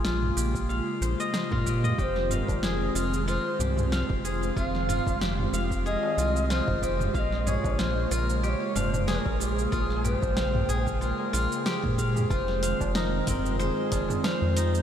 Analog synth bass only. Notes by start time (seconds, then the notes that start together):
Already playing: A#1
0.37 A#1
1.01 A#1
1.52 A#2
1.98 F1
2.48 F1
2.95 F1
3.60 C2
4.10 F1
4.56 F1
5.06 F1
5.53 F1
6.17 C2
6.68 F1
7.14 A#1
7.64 A#1
8.11 A#1
8.76 F1
9.26 A#1
9.72 A#1
10.22 A#1
10.69 A#1
11.33 A#1
11.84 A#2
12.30 F1
12.80 F1
13.27 F1
13.92 F1
14.42 F2